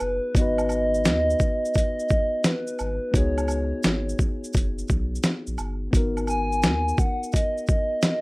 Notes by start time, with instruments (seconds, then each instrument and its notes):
Already playing: tine electric piano B3 D#4 F#4 G#4, soft synth lead B4
0.00 sub bass F#1, high woodblock, maracas, shaker
0.35 sub bass G#1, tine electric piano B3 D#4, soft synth lead D#5, kick, closed hi-hat, maracas, shaker
0.40 tine electric piano F#4 B4
0.58 high woodblock, shaker
0.69 high woodblock, maracas, shaker
0.94 shaker
1.04 sub bass D#2, snare, closed hi-hat, maracas, shaker
1.30 shaker
1.39 kick, maracas, shaker
1.65 shaker
1.74 soft synth lead D#5, kick, closed hi-hat, maracas, shaker
1.99 shaker
2.09 kick, maracas, shaker
2.44 soft synth lead B4, snare, closed hi-hat, maracas, shaker
2.67 shaker
2.79 sub bass G#1, high woodblock, shaker, maracas
3.12 sub bass C#2, tine electric piano B3 D#4 F#4, soft synth lead C#5, kick, closed hi-hat, maracas, shaker
3.17 tine electric piano G#4
3.38 high woodblock, shaker
3.48 high woodblock, maracas, shaker
3.83 sub bass G#1, snare, closed hi-hat, maracas, shaker
4.09 shaker
4.18 kick, maracas, shaker
4.44 shaker
4.53 sub bass F#1, kick, closed hi-hat, maracas, shaker
4.79 shaker
4.88 sub bass B1, kick, maracas, shaker
5.15 shaker
5.23 snare, closed hi-hat, maracas, shaker
5.47 sub bass A#1, shaker
5.58 sub bass G1, high woodblock, maracas, shaker
5.91 sub bass G#1, tine electric piano B3 D#4 F#4, kick, closed hi-hat, maracas, shaker
5.97 tine electric piano A#4
6.17 high woodblock, shaker
6.27 soft synth lead G#5, high woodblock, maracas, shaker
6.52 shaker
6.62 sub bass D#2, snare, closed hi-hat, maracas, shaker
6.88 shaker
6.98 soft synth lead F#5, kick, maracas, shaker
7.23 shaker
7.32 soft synth lead D#5, kick, closed hi-hat, maracas, shaker
7.58 shaker
7.67 soft synth lead D#5, kick, maracas, shaker
8.02 snare, closed hi-hat, maracas, shaker